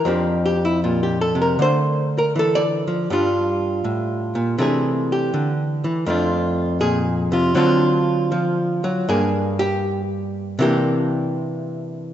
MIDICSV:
0, 0, Header, 1, 2, 480
1, 0, Start_track
1, 0, Key_signature, -1, "major"
1, 0, Tempo, 763359
1, 29, Time_signature, 4, 2, 24, 8
1, 1469, Tempo, 742574
1, 4829, Tempo, 763359
1, 6749, Tempo, 801068
1, 7676, End_track
2, 0, Start_track
2, 0, Title_t, "Hollow-body jazz guitar"
2, 0, Program_c, 0, 26
2, 32, Note_on_c, 0, 41, 70
2, 36, Note_on_c, 0, 53, 43
2, 40, Note_on_c, 0, 60, 47
2, 44, Note_on_c, 0, 62, 41
2, 50, Note_on_c, 0, 67, 44
2, 279, Note_off_c, 0, 67, 0
2, 287, Note_on_c, 0, 67, 77
2, 401, Note_off_c, 0, 67, 0
2, 405, Note_off_c, 0, 62, 0
2, 408, Note_on_c, 0, 64, 76
2, 499, Note_off_c, 0, 64, 0
2, 527, Note_on_c, 0, 46, 55
2, 533, Note_on_c, 0, 65, 80
2, 646, Note_off_c, 0, 65, 0
2, 648, Note_on_c, 0, 67, 67
2, 761, Note_off_c, 0, 67, 0
2, 763, Note_on_c, 0, 69, 90
2, 847, Note_off_c, 0, 46, 0
2, 850, Note_on_c, 0, 48, 57
2, 880, Note_off_c, 0, 69, 0
2, 890, Note_on_c, 0, 70, 70
2, 980, Note_off_c, 0, 70, 0
2, 982, Note_off_c, 0, 53, 0
2, 984, Note_off_c, 0, 60, 0
2, 996, Note_off_c, 0, 41, 0
2, 998, Note_off_c, 0, 48, 0
2, 999, Note_on_c, 0, 50, 64
2, 1008, Note_on_c, 0, 57, 49
2, 1019, Note_on_c, 0, 72, 100
2, 1374, Note_on_c, 0, 70, 82
2, 1407, Note_off_c, 0, 72, 0
2, 1458, Note_off_c, 0, 70, 0
2, 1479, Note_off_c, 0, 57, 0
2, 1482, Note_on_c, 0, 52, 63
2, 1505, Note_on_c, 0, 69, 87
2, 1609, Note_on_c, 0, 74, 106
2, 1653, Note_off_c, 0, 69, 0
2, 1788, Note_off_c, 0, 74, 0
2, 1808, Note_off_c, 0, 52, 0
2, 1817, Note_on_c, 0, 53, 58
2, 1936, Note_off_c, 0, 50, 0
2, 1961, Note_off_c, 0, 53, 0
2, 1965, Note_on_c, 0, 43, 73
2, 1970, Note_on_c, 0, 55, 58
2, 1978, Note_on_c, 0, 62, 60
2, 1982, Note_on_c, 0, 65, 69
2, 2441, Note_off_c, 0, 43, 0
2, 2444, Note_on_c, 0, 45, 62
2, 2772, Note_off_c, 0, 45, 0
2, 2772, Note_on_c, 0, 46, 64
2, 2910, Note_off_c, 0, 55, 0
2, 2920, Note_off_c, 0, 46, 0
2, 2923, Note_on_c, 0, 48, 84
2, 2926, Note_on_c, 0, 52, 44
2, 2931, Note_on_c, 0, 57, 55
2, 2932, Note_off_c, 0, 62, 0
2, 2934, Note_off_c, 0, 65, 0
2, 2935, Note_on_c, 0, 62, 52
2, 2943, Note_on_c, 0, 68, 77
2, 3252, Note_off_c, 0, 68, 0
2, 3270, Note_on_c, 0, 67, 78
2, 3401, Note_off_c, 0, 48, 0
2, 3408, Note_on_c, 0, 50, 70
2, 3523, Note_off_c, 0, 67, 0
2, 3728, Note_off_c, 0, 52, 0
2, 3730, Note_off_c, 0, 50, 0
2, 3736, Note_on_c, 0, 52, 65
2, 3861, Note_off_c, 0, 57, 0
2, 3878, Note_off_c, 0, 52, 0
2, 3879, Note_on_c, 0, 41, 82
2, 3885, Note_on_c, 0, 53, 52
2, 3892, Note_on_c, 0, 57, 58
2, 3896, Note_off_c, 0, 62, 0
2, 3898, Note_on_c, 0, 62, 55
2, 3902, Note_on_c, 0, 65, 54
2, 4357, Note_off_c, 0, 65, 0
2, 4358, Note_on_c, 0, 46, 64
2, 4360, Note_on_c, 0, 68, 90
2, 4673, Note_off_c, 0, 68, 0
2, 4684, Note_off_c, 0, 46, 0
2, 4689, Note_on_c, 0, 48, 67
2, 4698, Note_on_c, 0, 65, 66
2, 4816, Note_off_c, 0, 53, 0
2, 4821, Note_off_c, 0, 57, 0
2, 4833, Note_off_c, 0, 41, 0
2, 4834, Note_off_c, 0, 48, 0
2, 4836, Note_on_c, 0, 50, 80
2, 4839, Note_on_c, 0, 54, 59
2, 4842, Note_on_c, 0, 60, 72
2, 4844, Note_off_c, 0, 65, 0
2, 4846, Note_off_c, 0, 62, 0
2, 4848, Note_on_c, 0, 62, 72
2, 4851, Note_on_c, 0, 65, 81
2, 5312, Note_off_c, 0, 54, 0
2, 5321, Note_on_c, 0, 53, 72
2, 5645, Note_off_c, 0, 53, 0
2, 5650, Note_on_c, 0, 54, 70
2, 5773, Note_off_c, 0, 50, 0
2, 5775, Note_off_c, 0, 60, 0
2, 5792, Note_off_c, 0, 54, 0
2, 5797, Note_off_c, 0, 65, 0
2, 5804, Note_on_c, 0, 43, 87
2, 5810, Note_on_c, 0, 68, 92
2, 5814, Note_off_c, 0, 62, 0
2, 5814, Note_on_c, 0, 58, 56
2, 5816, Note_on_c, 0, 62, 49
2, 6115, Note_off_c, 0, 68, 0
2, 6124, Note_on_c, 0, 67, 103
2, 6385, Note_off_c, 0, 67, 0
2, 6740, Note_off_c, 0, 43, 0
2, 6745, Note_off_c, 0, 58, 0
2, 6745, Note_off_c, 0, 62, 0
2, 6749, Note_on_c, 0, 48, 90
2, 6759, Note_on_c, 0, 52, 78
2, 6760, Note_on_c, 0, 58, 61
2, 6764, Note_on_c, 0, 62, 65
2, 6770, Note_on_c, 0, 67, 77
2, 7676, Note_off_c, 0, 48, 0
2, 7676, Note_off_c, 0, 52, 0
2, 7676, Note_off_c, 0, 58, 0
2, 7676, Note_off_c, 0, 62, 0
2, 7676, Note_off_c, 0, 67, 0
2, 7676, End_track
0, 0, End_of_file